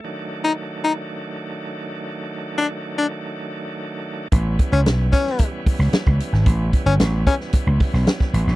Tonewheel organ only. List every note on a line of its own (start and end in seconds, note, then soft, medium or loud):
0.00 4.28 A3 medium
0.04 4.28 D#3 medium
0.04 4.28 F#3 medium
0.04 4.28 D4 medium
4.32 8.56 E3 medium
4.32 8.56 G3 medium
4.32 8.56 B3 medium
4.32 8.56 C#4 medium